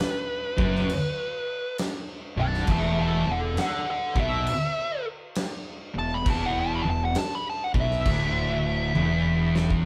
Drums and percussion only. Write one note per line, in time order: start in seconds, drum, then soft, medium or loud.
0.00 snare loud
0.00 crash medium
0.58 kick loud
0.76 snare soft
0.89 crash medium
1.78 snare loud
1.78 crash medium
2.54 snare soft
2.67 kick loud
2.67 crash medium
3.57 snare loud
3.57 crash medium
4.16 kick loud
4.47 crash medium
5.35 snare loud
5.35 crash medium
6.26 kick loud
6.26 crash medium
7.15 snare loud
7.15 crash medium
7.74 kick loud
7.91 snare soft
8.05 kick loud
8.05 crash medium
8.95 high tom medium
9.56 snare loud
9.70 kick loud